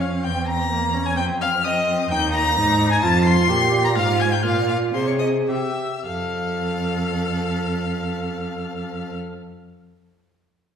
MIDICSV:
0, 0, Header, 1, 5, 480
1, 0, Start_track
1, 0, Tempo, 465477
1, 250, Time_signature, 2, 2, 24, 8
1, 3607, Tempo, 482703
1, 5047, Tempo, 536193
1, 5527, Tempo, 576923
1, 9916, End_track
2, 0, Start_track
2, 0, Title_t, "Violin"
2, 0, Program_c, 0, 40
2, 7, Note_on_c, 0, 89, 82
2, 89, Note_off_c, 0, 89, 0
2, 242, Note_on_c, 0, 91, 97
2, 483, Note_off_c, 0, 91, 0
2, 487, Note_on_c, 0, 94, 102
2, 1077, Note_off_c, 0, 94, 0
2, 1085, Note_on_c, 0, 92, 98
2, 1197, Note_off_c, 0, 92, 0
2, 1203, Note_on_c, 0, 91, 103
2, 1286, Note_off_c, 0, 91, 0
2, 1456, Note_on_c, 0, 89, 127
2, 1690, Note_on_c, 0, 87, 110
2, 1705, Note_off_c, 0, 89, 0
2, 2175, Note_off_c, 0, 87, 0
2, 2180, Note_on_c, 0, 91, 127
2, 2406, Note_off_c, 0, 91, 0
2, 2412, Note_on_c, 0, 94, 127
2, 3020, Note_on_c, 0, 92, 99
2, 3036, Note_off_c, 0, 94, 0
2, 3108, Note_off_c, 0, 92, 0
2, 3114, Note_on_c, 0, 93, 127
2, 3353, Note_off_c, 0, 93, 0
2, 3358, Note_on_c, 0, 96, 127
2, 3947, Note_on_c, 0, 94, 109
2, 3962, Note_off_c, 0, 96, 0
2, 4063, Note_on_c, 0, 89, 113
2, 4078, Note_off_c, 0, 94, 0
2, 4302, Note_on_c, 0, 92, 126
2, 4317, Note_off_c, 0, 89, 0
2, 4426, Note_on_c, 0, 91, 115
2, 4441, Note_off_c, 0, 92, 0
2, 4532, Note_on_c, 0, 89, 110
2, 4546, Note_off_c, 0, 91, 0
2, 4777, Note_off_c, 0, 89, 0
2, 4783, Note_on_c, 0, 89, 96
2, 4862, Note_off_c, 0, 89, 0
2, 5038, Note_on_c, 0, 84, 110
2, 5156, Note_off_c, 0, 84, 0
2, 5163, Note_on_c, 0, 85, 92
2, 5210, Note_off_c, 0, 85, 0
2, 5264, Note_on_c, 0, 87, 99
2, 5335, Note_off_c, 0, 87, 0
2, 5526, Note_on_c, 0, 88, 88
2, 5999, Note_off_c, 0, 88, 0
2, 6008, Note_on_c, 0, 89, 94
2, 8559, Note_off_c, 0, 89, 0
2, 9916, End_track
3, 0, Start_track
3, 0, Title_t, "Violin"
3, 0, Program_c, 1, 40
3, 0, Note_on_c, 1, 77, 80
3, 247, Note_on_c, 1, 79, 88
3, 263, Note_off_c, 1, 77, 0
3, 484, Note_on_c, 1, 82, 96
3, 499, Note_off_c, 1, 79, 0
3, 1094, Note_on_c, 1, 80, 89
3, 1109, Note_off_c, 1, 82, 0
3, 1198, Note_off_c, 1, 80, 0
3, 1204, Note_on_c, 1, 79, 102
3, 1286, Note_off_c, 1, 79, 0
3, 1456, Note_on_c, 1, 77, 102
3, 1539, Note_off_c, 1, 77, 0
3, 1706, Note_on_c, 1, 75, 110
3, 2170, Note_off_c, 1, 75, 0
3, 2177, Note_on_c, 1, 79, 118
3, 2259, Note_off_c, 1, 79, 0
3, 2408, Note_on_c, 1, 82, 127
3, 2993, Note_off_c, 1, 82, 0
3, 3007, Note_on_c, 1, 80, 96
3, 3115, Note_on_c, 1, 81, 111
3, 3131, Note_off_c, 1, 80, 0
3, 3367, Note_on_c, 1, 84, 126
3, 3382, Note_off_c, 1, 81, 0
3, 3949, Note_off_c, 1, 84, 0
3, 3955, Note_on_c, 1, 82, 99
3, 4003, Note_off_c, 1, 82, 0
3, 4064, Note_on_c, 1, 77, 117
3, 4318, Note_on_c, 1, 80, 104
3, 4333, Note_off_c, 1, 77, 0
3, 4428, Note_on_c, 1, 79, 91
3, 4442, Note_off_c, 1, 80, 0
3, 4549, Note_off_c, 1, 79, 0
3, 4554, Note_on_c, 1, 77, 105
3, 4787, Note_off_c, 1, 77, 0
3, 4793, Note_on_c, 1, 77, 102
3, 4872, Note_off_c, 1, 77, 0
3, 5056, Note_on_c, 1, 72, 93
3, 5160, Note_on_c, 1, 73, 82
3, 5174, Note_off_c, 1, 72, 0
3, 5273, Note_off_c, 1, 73, 0
3, 5278, Note_on_c, 1, 75, 88
3, 5350, Note_off_c, 1, 75, 0
3, 5524, Note_on_c, 1, 76, 81
3, 5998, Note_off_c, 1, 76, 0
3, 6015, Note_on_c, 1, 77, 83
3, 8562, Note_off_c, 1, 77, 0
3, 9916, End_track
4, 0, Start_track
4, 0, Title_t, "Viola"
4, 0, Program_c, 2, 41
4, 0, Note_on_c, 2, 61, 72
4, 250, Note_on_c, 2, 60, 75
4, 265, Note_off_c, 2, 61, 0
4, 724, Note_off_c, 2, 60, 0
4, 730, Note_on_c, 2, 58, 84
4, 968, Note_on_c, 2, 61, 82
4, 983, Note_off_c, 2, 58, 0
4, 1210, Note_on_c, 2, 60, 80
4, 1226, Note_off_c, 2, 61, 0
4, 1695, Note_off_c, 2, 60, 0
4, 1699, Note_on_c, 2, 60, 81
4, 2177, Note_on_c, 2, 63, 91
4, 2193, Note_off_c, 2, 60, 0
4, 2634, Note_off_c, 2, 63, 0
4, 2641, Note_on_c, 2, 63, 101
4, 3117, Note_on_c, 2, 65, 91
4, 3133, Note_off_c, 2, 63, 0
4, 3599, Note_on_c, 2, 67, 99
4, 3614, Note_off_c, 2, 65, 0
4, 4066, Note_off_c, 2, 67, 0
4, 4072, Note_on_c, 2, 65, 85
4, 4531, Note_off_c, 2, 65, 0
4, 4537, Note_on_c, 2, 65, 88
4, 5040, Note_on_c, 2, 68, 75
4, 5055, Note_off_c, 2, 65, 0
4, 5523, Note_on_c, 2, 67, 66
4, 5536, Note_off_c, 2, 68, 0
4, 5804, Note_off_c, 2, 67, 0
4, 6006, Note_on_c, 2, 69, 80
4, 8558, Note_off_c, 2, 69, 0
4, 9916, End_track
5, 0, Start_track
5, 0, Title_t, "Cello"
5, 0, Program_c, 3, 42
5, 0, Note_on_c, 3, 41, 78
5, 248, Note_on_c, 3, 40, 78
5, 264, Note_off_c, 3, 41, 0
5, 1217, Note_on_c, 3, 41, 81
5, 1232, Note_off_c, 3, 40, 0
5, 2165, Note_off_c, 3, 41, 0
5, 2171, Note_on_c, 3, 39, 95
5, 2652, Note_on_c, 3, 44, 106
5, 2668, Note_off_c, 3, 39, 0
5, 3120, Note_off_c, 3, 44, 0
5, 3126, Note_on_c, 3, 41, 105
5, 3596, Note_off_c, 3, 41, 0
5, 3603, Note_on_c, 3, 46, 95
5, 4073, Note_on_c, 3, 44, 99
5, 4088, Note_off_c, 3, 46, 0
5, 4546, Note_on_c, 3, 46, 88
5, 4561, Note_off_c, 3, 44, 0
5, 5034, Note_off_c, 3, 46, 0
5, 5040, Note_on_c, 3, 48, 77
5, 5514, Note_off_c, 3, 48, 0
5, 5529, Note_on_c, 3, 48, 80
5, 5596, Note_off_c, 3, 48, 0
5, 6008, Note_on_c, 3, 41, 83
5, 8559, Note_off_c, 3, 41, 0
5, 9916, End_track
0, 0, End_of_file